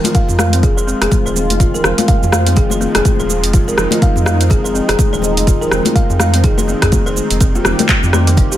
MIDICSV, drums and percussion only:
0, 0, Header, 1, 2, 480
1, 0, Start_track
1, 0, Key_signature, -4, "minor"
1, 0, Tempo, 483871
1, 1588, Time_signature, 4, 2, 24, 8
1, 8504, End_track
2, 0, Start_track
2, 0, Title_t, "Drums"
2, 40, Note_on_c, 9, 63, 93
2, 48, Note_on_c, 9, 42, 54
2, 55, Note_on_c, 9, 82, 51
2, 139, Note_off_c, 9, 63, 0
2, 145, Note_off_c, 9, 42, 0
2, 145, Note_on_c, 9, 42, 43
2, 147, Note_on_c, 9, 36, 114
2, 152, Note_off_c, 9, 82, 0
2, 152, Note_on_c, 9, 82, 50
2, 245, Note_off_c, 9, 42, 0
2, 246, Note_off_c, 9, 36, 0
2, 252, Note_off_c, 9, 82, 0
2, 283, Note_on_c, 9, 62, 39
2, 285, Note_on_c, 9, 64, 85
2, 292, Note_on_c, 9, 82, 50
2, 382, Note_off_c, 9, 62, 0
2, 384, Note_off_c, 9, 64, 0
2, 384, Note_on_c, 9, 37, 89
2, 386, Note_on_c, 9, 63, 95
2, 391, Note_off_c, 9, 82, 0
2, 391, Note_on_c, 9, 82, 85
2, 483, Note_off_c, 9, 37, 0
2, 486, Note_off_c, 9, 63, 0
2, 490, Note_off_c, 9, 82, 0
2, 526, Note_on_c, 9, 42, 53
2, 533, Note_on_c, 9, 82, 51
2, 625, Note_off_c, 9, 42, 0
2, 626, Note_on_c, 9, 42, 41
2, 627, Note_on_c, 9, 36, 116
2, 632, Note_off_c, 9, 82, 0
2, 633, Note_on_c, 9, 82, 47
2, 634, Note_on_c, 9, 62, 46
2, 725, Note_off_c, 9, 42, 0
2, 726, Note_off_c, 9, 36, 0
2, 732, Note_off_c, 9, 82, 0
2, 733, Note_off_c, 9, 62, 0
2, 772, Note_on_c, 9, 82, 88
2, 871, Note_off_c, 9, 82, 0
2, 874, Note_on_c, 9, 82, 49
2, 973, Note_off_c, 9, 82, 0
2, 1008, Note_on_c, 9, 37, 87
2, 1008, Note_on_c, 9, 42, 51
2, 1015, Note_on_c, 9, 82, 48
2, 1021, Note_on_c, 9, 62, 41
2, 1104, Note_on_c, 9, 64, 90
2, 1107, Note_off_c, 9, 37, 0
2, 1107, Note_off_c, 9, 42, 0
2, 1107, Note_on_c, 9, 36, 110
2, 1107, Note_on_c, 9, 42, 41
2, 1108, Note_on_c, 9, 63, 86
2, 1114, Note_off_c, 9, 82, 0
2, 1114, Note_on_c, 9, 82, 86
2, 1120, Note_off_c, 9, 62, 0
2, 1203, Note_off_c, 9, 64, 0
2, 1206, Note_off_c, 9, 36, 0
2, 1207, Note_off_c, 9, 42, 0
2, 1207, Note_off_c, 9, 63, 0
2, 1214, Note_off_c, 9, 82, 0
2, 1254, Note_on_c, 9, 82, 49
2, 1348, Note_on_c, 9, 63, 54
2, 1350, Note_on_c, 9, 62, 52
2, 1352, Note_on_c, 9, 64, 81
2, 1353, Note_off_c, 9, 82, 0
2, 1353, Note_on_c, 9, 82, 83
2, 1447, Note_off_c, 9, 63, 0
2, 1449, Note_off_c, 9, 62, 0
2, 1451, Note_off_c, 9, 64, 0
2, 1452, Note_off_c, 9, 82, 0
2, 1489, Note_on_c, 9, 63, 61
2, 1490, Note_on_c, 9, 42, 53
2, 1497, Note_on_c, 9, 82, 49
2, 1587, Note_off_c, 9, 42, 0
2, 1587, Note_on_c, 9, 36, 115
2, 1587, Note_on_c, 9, 42, 40
2, 1589, Note_off_c, 9, 63, 0
2, 1594, Note_off_c, 9, 82, 0
2, 1594, Note_on_c, 9, 82, 87
2, 1686, Note_off_c, 9, 36, 0
2, 1687, Note_off_c, 9, 42, 0
2, 1694, Note_off_c, 9, 82, 0
2, 1729, Note_on_c, 9, 62, 47
2, 1735, Note_on_c, 9, 82, 51
2, 1824, Note_on_c, 9, 64, 96
2, 1825, Note_on_c, 9, 37, 89
2, 1829, Note_off_c, 9, 62, 0
2, 1833, Note_off_c, 9, 82, 0
2, 1833, Note_on_c, 9, 82, 52
2, 1923, Note_off_c, 9, 64, 0
2, 1925, Note_off_c, 9, 37, 0
2, 1932, Note_off_c, 9, 82, 0
2, 1965, Note_on_c, 9, 42, 53
2, 1969, Note_on_c, 9, 63, 105
2, 1972, Note_on_c, 9, 82, 51
2, 2064, Note_off_c, 9, 42, 0
2, 2064, Note_on_c, 9, 42, 41
2, 2067, Note_on_c, 9, 36, 119
2, 2068, Note_off_c, 9, 63, 0
2, 2071, Note_off_c, 9, 82, 0
2, 2071, Note_on_c, 9, 82, 53
2, 2164, Note_off_c, 9, 42, 0
2, 2166, Note_off_c, 9, 36, 0
2, 2171, Note_off_c, 9, 82, 0
2, 2213, Note_on_c, 9, 82, 52
2, 2215, Note_on_c, 9, 62, 36
2, 2217, Note_on_c, 9, 64, 92
2, 2306, Note_on_c, 9, 37, 92
2, 2308, Note_on_c, 9, 63, 101
2, 2312, Note_off_c, 9, 82, 0
2, 2313, Note_on_c, 9, 82, 89
2, 2315, Note_off_c, 9, 62, 0
2, 2316, Note_off_c, 9, 64, 0
2, 2405, Note_off_c, 9, 37, 0
2, 2407, Note_off_c, 9, 63, 0
2, 2412, Note_off_c, 9, 82, 0
2, 2445, Note_on_c, 9, 42, 51
2, 2452, Note_on_c, 9, 82, 52
2, 2538, Note_on_c, 9, 62, 50
2, 2544, Note_off_c, 9, 42, 0
2, 2544, Note_on_c, 9, 64, 88
2, 2545, Note_on_c, 9, 42, 40
2, 2547, Note_on_c, 9, 36, 122
2, 2552, Note_off_c, 9, 82, 0
2, 2552, Note_on_c, 9, 82, 53
2, 2638, Note_off_c, 9, 62, 0
2, 2643, Note_off_c, 9, 64, 0
2, 2644, Note_off_c, 9, 42, 0
2, 2646, Note_off_c, 9, 36, 0
2, 2651, Note_off_c, 9, 82, 0
2, 2676, Note_on_c, 9, 63, 92
2, 2694, Note_on_c, 9, 82, 90
2, 2776, Note_off_c, 9, 63, 0
2, 2785, Note_on_c, 9, 63, 64
2, 2793, Note_off_c, 9, 82, 0
2, 2793, Note_on_c, 9, 82, 51
2, 2884, Note_off_c, 9, 63, 0
2, 2892, Note_off_c, 9, 82, 0
2, 2925, Note_on_c, 9, 37, 90
2, 2925, Note_on_c, 9, 42, 47
2, 2928, Note_on_c, 9, 62, 35
2, 2932, Note_on_c, 9, 82, 51
2, 3024, Note_off_c, 9, 37, 0
2, 3024, Note_off_c, 9, 42, 0
2, 3026, Note_on_c, 9, 42, 42
2, 3027, Note_off_c, 9, 62, 0
2, 3028, Note_on_c, 9, 36, 119
2, 3031, Note_off_c, 9, 82, 0
2, 3031, Note_on_c, 9, 63, 83
2, 3033, Note_on_c, 9, 82, 87
2, 3125, Note_off_c, 9, 42, 0
2, 3127, Note_off_c, 9, 36, 0
2, 3130, Note_off_c, 9, 63, 0
2, 3132, Note_off_c, 9, 82, 0
2, 3173, Note_on_c, 9, 82, 52
2, 3270, Note_on_c, 9, 62, 48
2, 3272, Note_off_c, 9, 82, 0
2, 3273, Note_on_c, 9, 82, 85
2, 3369, Note_off_c, 9, 62, 0
2, 3372, Note_off_c, 9, 82, 0
2, 3408, Note_on_c, 9, 42, 51
2, 3415, Note_on_c, 9, 82, 52
2, 3506, Note_off_c, 9, 42, 0
2, 3506, Note_on_c, 9, 42, 40
2, 3509, Note_on_c, 9, 36, 121
2, 3513, Note_off_c, 9, 82, 0
2, 3513, Note_on_c, 9, 82, 94
2, 3605, Note_off_c, 9, 42, 0
2, 3608, Note_off_c, 9, 36, 0
2, 3612, Note_off_c, 9, 82, 0
2, 3650, Note_on_c, 9, 62, 44
2, 3654, Note_on_c, 9, 82, 54
2, 3745, Note_on_c, 9, 64, 84
2, 3746, Note_on_c, 9, 37, 88
2, 3749, Note_off_c, 9, 62, 0
2, 3753, Note_off_c, 9, 82, 0
2, 3753, Note_on_c, 9, 82, 53
2, 3844, Note_off_c, 9, 64, 0
2, 3845, Note_off_c, 9, 37, 0
2, 3853, Note_off_c, 9, 82, 0
2, 3876, Note_on_c, 9, 63, 97
2, 3887, Note_on_c, 9, 42, 52
2, 3894, Note_on_c, 9, 82, 54
2, 3975, Note_off_c, 9, 63, 0
2, 3986, Note_off_c, 9, 42, 0
2, 3988, Note_on_c, 9, 42, 42
2, 3989, Note_on_c, 9, 36, 124
2, 3993, Note_off_c, 9, 82, 0
2, 3995, Note_on_c, 9, 82, 54
2, 4087, Note_off_c, 9, 42, 0
2, 4088, Note_off_c, 9, 36, 0
2, 4094, Note_off_c, 9, 82, 0
2, 4124, Note_on_c, 9, 64, 81
2, 4128, Note_on_c, 9, 62, 37
2, 4137, Note_on_c, 9, 82, 53
2, 4223, Note_off_c, 9, 64, 0
2, 4224, Note_on_c, 9, 63, 98
2, 4227, Note_off_c, 9, 62, 0
2, 4229, Note_on_c, 9, 37, 88
2, 4236, Note_off_c, 9, 82, 0
2, 4236, Note_on_c, 9, 82, 91
2, 4323, Note_off_c, 9, 63, 0
2, 4328, Note_off_c, 9, 37, 0
2, 4335, Note_off_c, 9, 82, 0
2, 4371, Note_on_c, 9, 42, 52
2, 4378, Note_on_c, 9, 82, 54
2, 4462, Note_on_c, 9, 62, 49
2, 4469, Note_on_c, 9, 36, 125
2, 4470, Note_off_c, 9, 42, 0
2, 4472, Note_on_c, 9, 42, 41
2, 4477, Note_off_c, 9, 82, 0
2, 4479, Note_on_c, 9, 82, 53
2, 4561, Note_off_c, 9, 62, 0
2, 4568, Note_off_c, 9, 36, 0
2, 4571, Note_off_c, 9, 42, 0
2, 4578, Note_off_c, 9, 82, 0
2, 4617, Note_on_c, 9, 82, 94
2, 4716, Note_off_c, 9, 82, 0
2, 4716, Note_on_c, 9, 82, 53
2, 4815, Note_off_c, 9, 82, 0
2, 4850, Note_on_c, 9, 37, 89
2, 4850, Note_on_c, 9, 42, 49
2, 4852, Note_on_c, 9, 62, 35
2, 4857, Note_on_c, 9, 82, 49
2, 4947, Note_on_c, 9, 63, 93
2, 4947, Note_on_c, 9, 64, 108
2, 4948, Note_off_c, 9, 42, 0
2, 4948, Note_on_c, 9, 42, 40
2, 4949, Note_off_c, 9, 37, 0
2, 4949, Note_on_c, 9, 36, 125
2, 4952, Note_off_c, 9, 62, 0
2, 4955, Note_off_c, 9, 82, 0
2, 4955, Note_on_c, 9, 82, 94
2, 5046, Note_off_c, 9, 63, 0
2, 5047, Note_off_c, 9, 42, 0
2, 5047, Note_off_c, 9, 64, 0
2, 5048, Note_off_c, 9, 36, 0
2, 5054, Note_off_c, 9, 82, 0
2, 5097, Note_on_c, 9, 82, 53
2, 5178, Note_on_c, 9, 64, 89
2, 5183, Note_on_c, 9, 62, 43
2, 5184, Note_on_c, 9, 63, 55
2, 5196, Note_off_c, 9, 82, 0
2, 5196, Note_on_c, 9, 82, 89
2, 5277, Note_off_c, 9, 64, 0
2, 5282, Note_off_c, 9, 62, 0
2, 5283, Note_off_c, 9, 63, 0
2, 5295, Note_off_c, 9, 82, 0
2, 5329, Note_on_c, 9, 42, 52
2, 5329, Note_on_c, 9, 63, 55
2, 5336, Note_on_c, 9, 82, 53
2, 5428, Note_off_c, 9, 42, 0
2, 5428, Note_off_c, 9, 63, 0
2, 5428, Note_on_c, 9, 42, 41
2, 5429, Note_on_c, 9, 36, 117
2, 5435, Note_off_c, 9, 82, 0
2, 5435, Note_on_c, 9, 82, 92
2, 5527, Note_off_c, 9, 42, 0
2, 5528, Note_off_c, 9, 36, 0
2, 5534, Note_off_c, 9, 82, 0
2, 5576, Note_on_c, 9, 62, 47
2, 5577, Note_on_c, 9, 82, 52
2, 5669, Note_on_c, 9, 37, 87
2, 5670, Note_on_c, 9, 64, 86
2, 5675, Note_off_c, 9, 62, 0
2, 5676, Note_off_c, 9, 82, 0
2, 5676, Note_on_c, 9, 82, 53
2, 5768, Note_off_c, 9, 37, 0
2, 5769, Note_off_c, 9, 64, 0
2, 5776, Note_off_c, 9, 82, 0
2, 5804, Note_on_c, 9, 63, 112
2, 5809, Note_on_c, 9, 42, 53
2, 5816, Note_on_c, 9, 82, 53
2, 5903, Note_off_c, 9, 63, 0
2, 5908, Note_on_c, 9, 36, 119
2, 5909, Note_off_c, 9, 42, 0
2, 5909, Note_on_c, 9, 42, 42
2, 5916, Note_off_c, 9, 82, 0
2, 5916, Note_on_c, 9, 82, 52
2, 6007, Note_off_c, 9, 36, 0
2, 6008, Note_off_c, 9, 42, 0
2, 6015, Note_off_c, 9, 82, 0
2, 6046, Note_on_c, 9, 62, 33
2, 6051, Note_on_c, 9, 64, 79
2, 6055, Note_on_c, 9, 82, 54
2, 6146, Note_off_c, 9, 62, 0
2, 6146, Note_on_c, 9, 37, 84
2, 6148, Note_on_c, 9, 63, 98
2, 6150, Note_off_c, 9, 64, 0
2, 6154, Note_off_c, 9, 82, 0
2, 6154, Note_on_c, 9, 82, 91
2, 6246, Note_off_c, 9, 37, 0
2, 6248, Note_off_c, 9, 63, 0
2, 6253, Note_off_c, 9, 82, 0
2, 6285, Note_on_c, 9, 42, 53
2, 6292, Note_on_c, 9, 82, 53
2, 6384, Note_off_c, 9, 42, 0
2, 6385, Note_on_c, 9, 42, 40
2, 6385, Note_on_c, 9, 64, 89
2, 6387, Note_on_c, 9, 36, 119
2, 6387, Note_on_c, 9, 62, 51
2, 6391, Note_off_c, 9, 82, 0
2, 6392, Note_on_c, 9, 82, 54
2, 6484, Note_off_c, 9, 64, 0
2, 6485, Note_off_c, 9, 42, 0
2, 6486, Note_off_c, 9, 62, 0
2, 6487, Note_off_c, 9, 36, 0
2, 6492, Note_off_c, 9, 82, 0
2, 6525, Note_on_c, 9, 63, 96
2, 6533, Note_on_c, 9, 82, 89
2, 6624, Note_off_c, 9, 63, 0
2, 6624, Note_on_c, 9, 63, 65
2, 6632, Note_off_c, 9, 82, 0
2, 6634, Note_on_c, 9, 82, 52
2, 6724, Note_off_c, 9, 63, 0
2, 6733, Note_off_c, 9, 82, 0
2, 6767, Note_on_c, 9, 37, 82
2, 6767, Note_on_c, 9, 42, 50
2, 6767, Note_on_c, 9, 62, 36
2, 6768, Note_on_c, 9, 36, 58
2, 6774, Note_on_c, 9, 82, 50
2, 6864, Note_off_c, 9, 42, 0
2, 6864, Note_on_c, 9, 42, 40
2, 6866, Note_off_c, 9, 37, 0
2, 6866, Note_off_c, 9, 62, 0
2, 6867, Note_off_c, 9, 36, 0
2, 6868, Note_on_c, 9, 36, 120
2, 6868, Note_on_c, 9, 63, 83
2, 6871, Note_off_c, 9, 82, 0
2, 6871, Note_on_c, 9, 82, 89
2, 6963, Note_off_c, 9, 42, 0
2, 6967, Note_off_c, 9, 36, 0
2, 6967, Note_off_c, 9, 63, 0
2, 6970, Note_off_c, 9, 82, 0
2, 7012, Note_on_c, 9, 82, 53
2, 7104, Note_on_c, 9, 62, 41
2, 7112, Note_off_c, 9, 82, 0
2, 7112, Note_on_c, 9, 63, 53
2, 7112, Note_on_c, 9, 82, 87
2, 7204, Note_off_c, 9, 62, 0
2, 7211, Note_off_c, 9, 63, 0
2, 7211, Note_off_c, 9, 82, 0
2, 7246, Note_on_c, 9, 42, 52
2, 7253, Note_on_c, 9, 82, 53
2, 7346, Note_off_c, 9, 42, 0
2, 7346, Note_on_c, 9, 42, 43
2, 7347, Note_on_c, 9, 36, 113
2, 7353, Note_off_c, 9, 82, 0
2, 7353, Note_on_c, 9, 82, 91
2, 7445, Note_off_c, 9, 42, 0
2, 7447, Note_off_c, 9, 36, 0
2, 7452, Note_off_c, 9, 82, 0
2, 7494, Note_on_c, 9, 62, 51
2, 7494, Note_on_c, 9, 82, 48
2, 7587, Note_on_c, 9, 37, 85
2, 7592, Note_on_c, 9, 64, 84
2, 7593, Note_off_c, 9, 62, 0
2, 7593, Note_off_c, 9, 82, 0
2, 7594, Note_on_c, 9, 82, 51
2, 7686, Note_off_c, 9, 37, 0
2, 7691, Note_off_c, 9, 64, 0
2, 7693, Note_off_c, 9, 82, 0
2, 7728, Note_on_c, 9, 42, 54
2, 7735, Note_on_c, 9, 82, 52
2, 7737, Note_on_c, 9, 63, 108
2, 7825, Note_off_c, 9, 42, 0
2, 7825, Note_on_c, 9, 39, 106
2, 7825, Note_on_c, 9, 42, 42
2, 7827, Note_on_c, 9, 36, 118
2, 7833, Note_off_c, 9, 82, 0
2, 7833, Note_on_c, 9, 82, 52
2, 7836, Note_off_c, 9, 63, 0
2, 7925, Note_off_c, 9, 39, 0
2, 7925, Note_off_c, 9, 42, 0
2, 7927, Note_off_c, 9, 36, 0
2, 7932, Note_off_c, 9, 82, 0
2, 7965, Note_on_c, 9, 64, 87
2, 7967, Note_on_c, 9, 62, 35
2, 7973, Note_on_c, 9, 82, 50
2, 8064, Note_off_c, 9, 64, 0
2, 8066, Note_off_c, 9, 62, 0
2, 8066, Note_on_c, 9, 37, 84
2, 8070, Note_on_c, 9, 63, 103
2, 8073, Note_off_c, 9, 82, 0
2, 8073, Note_on_c, 9, 82, 90
2, 8165, Note_off_c, 9, 37, 0
2, 8169, Note_off_c, 9, 63, 0
2, 8172, Note_off_c, 9, 82, 0
2, 8207, Note_on_c, 9, 42, 55
2, 8214, Note_on_c, 9, 82, 52
2, 8301, Note_on_c, 9, 62, 49
2, 8306, Note_off_c, 9, 42, 0
2, 8307, Note_on_c, 9, 36, 118
2, 8307, Note_on_c, 9, 42, 43
2, 8313, Note_off_c, 9, 82, 0
2, 8314, Note_on_c, 9, 82, 50
2, 8400, Note_off_c, 9, 62, 0
2, 8406, Note_off_c, 9, 36, 0
2, 8407, Note_off_c, 9, 42, 0
2, 8414, Note_off_c, 9, 82, 0
2, 8453, Note_on_c, 9, 82, 90
2, 8504, Note_off_c, 9, 82, 0
2, 8504, End_track
0, 0, End_of_file